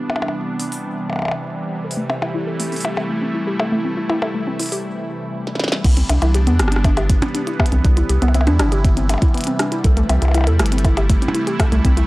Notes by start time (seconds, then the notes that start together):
Already playing: C3 E3 G3 B3 D4
0.10 percussion blips
0.16 percussion blips
0.22 percussion blips
0.28 percussion blips
0.60 open hi-hat
0.72 open hi-hat
1.10 percussion blips
1.13 percussion blips
1.16 percussion blips
1.19 percussion blips
1.22 percussion blips
1.25 percussion blips
1.28 percussion blips
1.31 percussion blips
1.85 A3 E4 A4
1.91 open hi-hat
1.97 A3
2.10 C4, percussion blips
2.22 E4, percussion blips
2.35 E4
2.47 A4
2.60 A3, open hi-hat
2.72 C4, open hi-hat
2.76 open hi-hat
2.80 open hi-hat
2.85 E4, percussion blips
2.97 G4, percussion blips
3.10 A3
3.22 C4
3.35 E4
3.47 G4
3.60 A4, percussion blips
3.72 A3
3.85 C4
3.97 E4
4.10 E4, percussion blips
4.22 A4, percussion blips
4.35 A3
4.47 C4
4.60 E4, open hi-hat
4.63 open hi-hat
4.66 open hi-hat
4.69 G4, open hi-hat
4.72 open hi-hat
5.47 snare
5.55 snare
5.60 snare
5.64 snare
5.68 snare
5.72 snare
5.84 C2 C3 E3 G3 B3 D4, kick, closed hi-hat, crash
5.97 C4, closed hi-hat
6.09 C2 D4, closed hi-hat, percussion blips
6.22 C2 E4, closed hi-hat, percussion blips
6.34 G4, closed hi-hat
6.47 E2 B3, closed hi-hat
6.59 G1 C4, cross-stick, closed hi-hat
6.68 cross-stick
6.72 D4, closed hi-hat
6.76 cross-stick
6.85 D4, kick, closed hi-hat, percussion blips
6.97 G4, closed hi-hat, percussion blips
7.10 B3, kick, closed hi-hat
7.22 C4, closed hi-hat, percussion blips
7.34 D4, closed hi-hat
7.47 E4, closed hi-hat
7.59 B3, kick, cross-stick, percussion blips
7.66 closed hi-hat
7.72 C2 C4, closed hi-hat
7.84 C2 D4 E4, kick, closed hi-hat
7.97 E4, closed hi-hat
8.10 C2 G4, closed hi-hat
8.22 C2 B3, closed hi-hat, percussion blips
8.28 percussion blips
8.34 C4, closed hi-hat, percussion blips
8.41 percussion blips
8.47 E2 D4, closed hi-hat, percussion blips
8.59 G1 D4, cross-stick, closed hi-hat
8.72 G4, closed hi-hat
8.85 B3, kick, closed hi-hat
8.97 C4, closed hi-hat
9.09 D4, closed hi-hat, percussion blips
9.14 percussion blips
9.18 percussion blips
9.22 E4, kick, closed hi-hat
9.34 B3, closed hi-hat
9.38 closed hi-hat
9.41 closed hi-hat
9.44 C4, closed hi-hat
9.47 closed hi-hat
9.59 D4, cross-stick, closed hi-hat
9.72 E4, closed hi-hat
9.84 C2 A3 E4 A4, kick, closed hi-hat
9.97 A3, closed hi-hat
10.10 C2 C4, closed hi-hat, percussion blips
10.22 C2 E4, closed hi-hat, percussion blips
10.25 percussion blips
10.28 percussion blips
10.31 closed hi-hat, percussion blips
10.35 E4, percussion blips
10.38 percussion blips
10.41 percussion blips
10.44 E2 A4, closed hi-hat, percussion blips
10.60 G1 A3, cross-stick, closed hi-hat
10.66 closed hi-hat
10.72 C4, closed hi-hat
10.78 closed hi-hat
10.85 E4, kick, closed hi-hat, percussion blips
10.97 G4, closed hi-hat, percussion blips
11.10 A3, kick, closed hi-hat
11.22 C4, closed hi-hat
11.28 percussion blips
11.35 E4, closed hi-hat
11.47 G4, closed hi-hat
11.60 A4, kick, cross-stick, closed hi-hat, percussion blips
11.72 C2 A3, closed hi-hat
11.84 C2 C4, kick, closed hi-hat
11.97 E4, closed hi-hat